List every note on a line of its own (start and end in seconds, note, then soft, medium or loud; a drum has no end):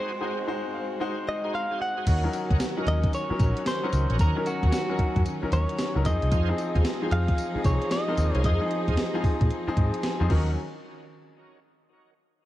0.00 0.21 G#3 medium
0.00 2.03 G#3 medium
0.00 2.03 C4 medium
0.00 0.12 D#4 loud
0.00 0.21 D#4 medium
0.00 0.12 F#4 medium
0.00 0.21 F#4 medium
0.00 2.03 F#4 medium
0.00 0.12 G#4 medium
0.00 0.13 C5 loud
0.00 0.22 C5 loud
0.00 1.77 C5 medium
0.21 0.44 G#3 medium
0.21 0.39 D#4 medium
0.21 0.44 D#4 medium
0.21 0.39 F#4 medium
0.21 0.45 F#4 medium
0.21 0.39 G#4 medium
0.21 0.39 C5 medium
0.21 0.45 C5 medium
0.47 0.94 G#3 medium
0.47 0.95 D#4 medium
0.47 0.95 F#4 medium
0.47 0.95 C5 loud
0.74 0.99 F5 medium
1.00 1.92 G#3 medium
1.00 1.18 D#4 medium
1.00 1.92 D#4 medium
1.00 1.19 F#4 medium
1.00 1.92 F#4 medium
1.00 1.19 G#4 medium
1.00 1.19 C5 medium
1.00 1.92 C5 loud
1.00 1.41 F#5 medium
1.29 1.53 D#5 loud
1.44 1.55 D#4 medium
1.44 1.55 F#4 medium
1.44 1.55 G#4 medium
1.44 1.55 C5 medium
1.44 1.53 A#5 medium
1.54 1.81 F5 loud
1.54 2.03 C6 medium
1.71 1.82 D#4 medium
1.71 1.82 F#4 medium
1.71 1.82 G#4 medium
1.71 1.82 C5 medium
1.82 2.88 F#5 loud
1.97 2.05 D#4 medium
1.97 2.06 F#4 medium
1.97 2.08 G#4 medium
1.97 2.08 C5 medium
2.07 2.26 D#2 loud
2.07 6.01 D#3 medium
2.07 4.17 C#4 medium
2.07 2.25 D#4 loud
2.07 2.25 F#4 medium
2.07 6.01 F#4 medium
2.07 2.25 A#4 medium
2.07 2.25 C#5 loud
2.07 kick loud
2.07 closed hi-hat loud
2.07 crash loud
2.07 tambourine medium
2.24 2.66 F#3 medium
2.24 2.66 C#4 medium
2.24 2.66 D#4 medium
2.24 2.66 A#4 medium
2.33 closed hi-hat medium
2.33 tambourine medium
2.50 2.58 C#2 medium
2.50 2.61 D#4 medium
2.50 2.61 F#4 medium
2.50 2.61 A#4 medium
2.50 2.61 C#5 medium
2.50 kick medium
2.50 closed hi-hat soft
2.60 snare loud
2.60 closed hi-hat medium
2.60 tambourine medium
2.77 3.19 F#3 medium
2.77 3.19 C#4 medium
2.77 2.88 D#4 medium
2.77 3.19 D#4 medium
2.77 2.88 F#4 medium
2.77 2.88 A#4 medium
2.77 3.19 A#4 medium
2.77 2.88 C#5 medium
2.87 3.06 D#2 medium
2.87 3.14 D#5 loud
2.87 closed hi-hat medium
3.04 kick loud
3.04 closed hi-hat medium
3.13 3.67 C#5 loud
3.13 closed hi-hat medium
3.13 tambourine medium
3.30 3.72 F#3 medium
3.30 3.72 C#4 medium
3.30 3.72 D#4 medium
3.30 3.72 A#4 medium
3.30 muted picked electric bass stroke soft
3.40 3.52 A#1 medium
3.40 kick medium
3.40 closed hi-hat medium
3.40 tambourine medium
3.57 closed hi-hat medium
3.66 4.16 C5 loud
3.66 snare loud
3.66 closed hi-hat medium
3.66 tambourine medium
3.83 4.25 F#3 medium
3.83 4.25 C#4 medium
3.83 3.94 D#4 medium
3.83 4.25 D#4 medium
3.83 3.94 F#4 medium
3.83 3.94 A#4 medium
3.83 4.26 A#4 medium
3.83 3.94 C#5 medium
3.93 4.06 C#2 medium
3.93 closed hi-hat medium
3.93 tambourine medium
4.10 4.17 A#1 medium
4.10 4.18 D#4 medium
4.10 4.18 F#4 medium
4.10 4.18 A#4 medium
4.10 4.19 C#5 medium
4.10 closed hi-hat medium
4.19 4.32 D#2 medium
4.19 6.03 C#4 medium
4.19 4.37 D#4 medium
4.19 4.37 F#4 medium
4.19 4.37 A#4 medium
4.19 4.47 A#4 loud
4.19 4.37 C#5 loud
4.19 kick loud
4.19 closed hi-hat loud
4.19 tambourine medium
4.36 4.78 F#3 medium
4.36 4.78 C#4 medium
4.36 4.78 D#4 medium
4.36 4.79 A#4 medium
4.46 4.72 F#4 medium
4.46 closed hi-hat medium
4.46 tambourine medium
4.63 4.70 D#2 medium
4.63 4.74 D#4 medium
4.63 4.74 F#4 medium
4.63 4.74 A#4 medium
4.63 4.74 C#5 medium
4.63 kick loud
4.63 closed hi-hat soft
4.72 5.22 F#4 medium
4.72 snare loud
4.72 closed hi-hat medium
4.72 tambourine loud
4.89 5.31 F#3 medium
4.89 5.31 C#4 medium
4.89 5.00 D#4 medium
4.89 5.31 D#4 medium
4.89 5.00 F#4 medium
4.89 5.00 A#4 medium
4.89 5.32 A#4 medium
4.89 5.00 C#5 medium
4.99 muted picked electric bass stroke soft
4.99 kick medium
4.99 closed hi-hat medium
5.16 5.23 F#2 medium
5.16 kick medium
5.16 closed hi-hat medium
5.26 closed hi-hat medium
5.26 tambourine medium
5.42 5.84 F#3 medium
5.42 5.84 C#4 medium
5.42 5.85 D#4 medium
5.42 5.85 A#4 medium
5.42 muted picked electric bass stroke medium
5.52 5.65 D#2 medium
5.52 6.02 C#5 medium
5.52 closed hi-hat medium
5.52 tambourine medium
5.69 closed hi-hat medium
5.79 snare loud
5.79 closed hi-hat medium
5.79 tambourine medium
5.95 6.03 C#2 medium
5.95 6.05 F#3 medium
5.95 6.05 C#4 medium
5.95 6.04 D#4 medium
5.95 6.06 A#4 medium
6.05 6.18 F2 loud
6.05 6.40 F3 medium
6.05 10.26 F3 medium
6.05 6.40 C4 medium
6.05 10.26 D#4 medium
6.05 6.40 D#4 medium
6.05 10.26 G#4 medium
6.05 6.41 G#4 medium
6.05 6.81 D#5 loud
6.05 kick loud
6.05 closed hi-hat medium
6.05 tambourine medium
6.22 6.30 C2 loud
6.22 closed hi-hat medium
6.31 6.51 F2 loud
6.31 6.49 D#4 loud
6.31 6.50 F4 medium
6.31 6.50 G#4 loud
6.31 6.50 C5 loud
6.31 kick loud
6.31 closed hi-hat loud
6.31 tambourine medium
6.48 6.90 F3 medium
6.48 6.91 C4 medium
6.48 6.91 D#4 medium
6.48 6.91 G#4 medium
6.58 closed hi-hat medium
6.58 tambourine medium
6.75 6.82 D#2 medium
6.75 6.86 D#4 medium
6.75 6.86 F4 medium
6.75 6.86 G#4 medium
6.75 6.86 C5 medium
6.75 kick medium
6.75 closed hi-hat soft
6.85 snare loud
6.85 closed hi-hat medium
6.85 tambourine medium
7.02 7.44 F3 medium
7.02 7.44 C4 medium
7.02 7.13 D#4 medium
7.02 7.44 D#4 medium
7.02 7.13 F4 medium
7.02 7.13 G#4 medium
7.02 7.44 G#4 medium
7.02 7.13 C5 medium
7.11 7.31 F2 medium
7.11 7.61 F5 loud
7.11 closed hi-hat medium
7.28 kick medium
7.28 closed hi-hat medium
7.38 closed hi-hat medium
7.38 tambourine medium
7.55 7.97 F3 medium
7.55 7.97 C4 medium
7.55 7.97 D#4 medium
7.55 7.97 G#4 medium
7.55 muted picked electric bass stroke soft
7.64 7.77 C2 medium
7.64 7.92 C#5 medium
7.64 kick medium
7.64 closed hi-hat medium
7.64 tambourine medium
7.82 closed hi-hat medium
7.91 8.44 D#5 loud
7.91 snare loud
7.91 closed hi-hat medium
7.91 tambourine medium
8.08 8.50 F3 medium
8.08 8.50 C4 medium
8.08 8.19 D#4 medium
8.08 8.50 D#4 medium
8.08 8.19 F4 medium
8.08 8.19 G#4 medium
8.08 8.50 A#4 medium
8.08 8.19 C5 medium
8.17 8.30 D#2 medium
8.17 closed hi-hat medium
8.17 tambourine medium
8.35 8.42 C2 medium
8.35 8.43 D#4 medium
8.35 8.43 F4 medium
8.35 8.43 G#4 medium
8.35 8.43 C5 medium
8.35 closed hi-hat medium
8.44 8.57 F2 loud
8.44 8.62 D#4 medium
8.44 8.62 F4 medium
8.44 8.62 G#4 medium
8.44 8.62 C5 loud
8.44 10.00 D#5 medium
8.44 kick loud
8.44 closed hi-hat medium
8.61 9.03 F3 medium
8.61 9.03 C4 medium
8.61 9.03 D#4 medium
8.61 9.03 G#4 medium
8.71 closed hi-hat medium
8.88 8.95 F2 medium
8.88 8.99 D#4 medium
8.88 8.99 F4 medium
8.88 8.99 G#4 medium
8.88 8.99 C5 medium
8.88 kick medium
8.88 closed hi-hat soft
8.97 snare loud
8.97 closed hi-hat medium
9.14 9.56 F3 medium
9.14 9.56 C4 medium
9.14 9.25 D#4 medium
9.14 9.56 D#4 medium
9.14 9.25 F4 medium
9.14 9.25 G#4 medium
9.14 9.56 G#4 loud
9.14 9.25 C5 medium
9.24 muted picked electric bass stroke soft
9.24 kick medium
9.24 open hi-hat medium
9.41 9.48 A#2 medium
9.41 kick loud
9.41 closed hi-hat medium
9.51 closed hi-hat medium
9.67 10.09 F3 medium
9.67 10.09 C4 medium
9.67 10.09 D#4 medium
9.67 10.10 G#4 loud
9.67 muted picked electric bass stroke medium
9.77 9.90 G#2 medium
9.77 10.02 D#5 medium
9.77 kick medium
9.77 closed hi-hat medium
9.94 closed hi-hat medium
10.03 10.28 G#5 medium
10.03 snare loud
10.03 closed hi-hat medium
10.20 10.28 F2 medium
10.20 10.30 F3 loud
10.20 10.30 C4 medium
10.20 10.28 D#4 medium
10.20 10.30 G#4 loud
10.30 10.55 D#2 loud
10.30 10.55 D#3 medium
10.30 10.55 F#3 medium
10.30 10.54 C#4 medium
10.30 10.55 C#4 medium
10.30 10.51 D#4 medium
10.30 10.55 D#4 medium
10.30 10.55 F#4 medium
10.30 10.51 F#4 medium
10.30 10.55 A#4 medium
10.30 10.51 A#4 medium
10.30 10.52 C#5 medium
10.30 kick loud
10.30 crash medium